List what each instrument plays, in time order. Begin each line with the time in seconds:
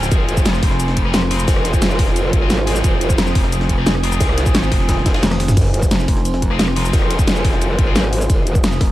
Already playing: wobble bass F1, distorted electric guitar C4 F4 G#4, analog synth pad F4 C5 G#5 F6
0.03 snare, cabasa
0.11 wobble bass F1, analog synth pad C6, kick, closed hi-hat, ride, cabasa
0.28 closed hi-hat, ride, cabasa
0.37 kick, cabasa
0.46 wobble bass F1, snare, closed hi-hat, ride, cabasa
0.54 snare, cabasa
0.63 wobble bass F1, kick, open hi-hat, ride
0.71 snare
0.80 closed hi-hat, ride, cabasa
0.88 snare
0.97 kick, closed hi-hat, ride
1.05 distorted electric guitar C4 F4 G#4, cross-stick
1.14 snare, closed hi-hat, ride, cabasa
1.22 cross-stick
1.31 distorted electric guitar C4 F4 G#4, open hi-hat, ride, cabasa
1.39 cabasa
1.48 wobble bass F1, kick, closed hi-hat, open hi-hat, cabasa
1.56 cross-stick
1.65 snare, closed hi-hat, ride, cabasa
1.73 kick, cabasa
1.82 snare, closed hi-hat, ride, cabasa
1.91 cabasa
1.99 kick, open hi-hat, ride
2.08 snare
2.16 closed hi-hat, ride, cabasa
2.33 wobble bass G#1, kick, closed hi-hat, ride
2.41 distorted electric guitar C4 F4 G#4
2.50 snare, closed hi-hat, ride, cabasa
2.59 cross-stick, ride
2.67 distorted electric guitar C4 F4 G#4, open hi-hat, ride, cabasa
2.76 snare, cabasa
2.84 wobble bass F1, analog synth pad D#6, kick, closed hi-hat, ride, cabasa
3.01 closed hi-hat, ride, cabasa
3.10 kick, cabasa
3.18 wobble bass F1, snare, closed hi-hat, ride, cabasa
3.27 snare, cabasa
3.35 wobble bass F1, kick, open hi-hat, ride
3.44 snare
3.52 closed hi-hat, ride, cabasa
3.61 snare
3.69 kick, closed hi-hat, ride
3.78 distorted electric guitar C4 F4 G#4, cross-stick
3.87 snare, closed hi-hat, ride, cabasa
3.95 cross-stick
4.03 distorted electric guitar C4 F4 G#4, open hi-hat, ride, cabasa
4.12 cabasa
4.21 wobble bass C2, kick, closed hi-hat, open hi-hat, cabasa
4.29 cross-stick
4.38 snare, closed hi-hat, ride, cabasa
4.46 kick, cabasa
4.55 wobble bass G#1, snare, closed hi-hat, ride, cabasa
4.63 cabasa
4.72 wobble bass F1, kick, open hi-hat, ride
4.80 snare
4.89 kick, snare, closed hi-hat, ride, cabasa
4.97 snare
5.06 wobble bass F1, kick, snare, closed hi-hat, ride, cabasa
5.14 distorted electric guitar C4 F4 G#4, snare, ride
5.23 wobble bass F1, snare, closed hi-hat, high tom, ride, cabasa
5.31 cross-stick, snare, high tom, ride
5.40 snare, open hi-hat, ride, cabasa
5.48 snare, mid tom, ride, cabasa
5.57 wobble bass F1, analog synth pad C6, kick, closed hi-hat, crash, ride, cabasa
5.74 closed hi-hat, ride, cabasa
5.83 kick, cabasa
5.91 wobble bass F1, snare, closed hi-hat, ride, cabasa
6.00 snare, cabasa
6.08 wobble bass F1, kick, open hi-hat, ride
6.17 snare
6.25 closed hi-hat, ride, cabasa
6.34 snare
6.42 kick, closed hi-hat, ride
6.50 distorted electric guitar C4 F4 G#4, cross-stick
6.59 snare, closed hi-hat, ride, cabasa
6.68 cross-stick
6.76 distorted electric guitar C4 F4 G#4, open hi-hat, ride, cabasa
6.85 cabasa
6.93 wobble bass F1, kick, closed hi-hat, open hi-hat, cabasa
7.02 cross-stick
7.10 snare, closed hi-hat, ride, cabasa
7.19 kick, cabasa
7.27 snare, closed hi-hat, ride, cabasa
7.36 cabasa
7.44 kick, open hi-hat, ride
7.53 snare
7.61 closed hi-hat, ride, cabasa
7.79 wobble bass G#1, kick, closed hi-hat, ride
7.87 distorted electric guitar C4 F4 G#4
7.96 snare, closed hi-hat, ride, cabasa
8.04 cross-stick, ride
8.13 open hi-hat, ride, cabasa
8.21 snare, cabasa
8.29 wobble bass F1, analog synth pad D#6, kick, closed hi-hat, ride, cabasa
8.47 closed hi-hat, ride, cabasa
8.55 kick, cabasa
8.64 wobble bass F1, snare, closed hi-hat, ride, cabasa
8.72 snare, cabasa
8.81 wobble bass F1, kick, snare, open hi-hat, ride